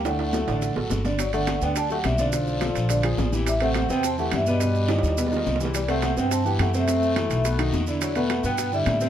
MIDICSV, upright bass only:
0, 0, Header, 1, 2, 480
1, 0, Start_track
1, 0, Key_signature, 1, "major"
1, 0, Tempo, 284225
1, 90, Time_signature, 4, 2, 24, 8
1, 15353, End_track
2, 0, Start_track
2, 0, Title_t, "Upright bass"
2, 0, Program_c, 0, 32
2, 0, Note_on_c, 0, 38, 85
2, 714, Note_off_c, 0, 38, 0
2, 800, Note_on_c, 0, 33, 79
2, 1253, Note_off_c, 0, 33, 0
2, 1273, Note_on_c, 0, 33, 63
2, 1507, Note_off_c, 0, 33, 0
2, 1518, Note_on_c, 0, 31, 85
2, 2637, Note_off_c, 0, 31, 0
2, 2720, Note_on_c, 0, 38, 89
2, 3399, Note_off_c, 0, 38, 0
2, 3447, Note_on_c, 0, 35, 86
2, 4562, Note_off_c, 0, 35, 0
2, 4644, Note_on_c, 0, 34, 95
2, 5321, Note_off_c, 0, 34, 0
2, 5365, Note_on_c, 0, 33, 97
2, 6481, Note_off_c, 0, 33, 0
2, 6561, Note_on_c, 0, 40, 96
2, 7240, Note_off_c, 0, 40, 0
2, 7291, Note_on_c, 0, 43, 91
2, 8404, Note_off_c, 0, 43, 0
2, 8491, Note_on_c, 0, 39, 92
2, 9164, Note_off_c, 0, 39, 0
2, 9220, Note_on_c, 0, 36, 91
2, 10327, Note_off_c, 0, 36, 0
2, 10413, Note_on_c, 0, 43, 87
2, 11084, Note_off_c, 0, 43, 0
2, 11128, Note_on_c, 0, 42, 89
2, 12239, Note_off_c, 0, 42, 0
2, 12329, Note_on_c, 0, 35, 100
2, 13001, Note_off_c, 0, 35, 0
2, 13049, Note_on_c, 0, 40, 92
2, 14158, Note_off_c, 0, 40, 0
2, 14245, Note_on_c, 0, 43, 87
2, 14917, Note_off_c, 0, 43, 0
2, 14963, Note_on_c, 0, 45, 90
2, 15353, Note_off_c, 0, 45, 0
2, 15353, End_track
0, 0, End_of_file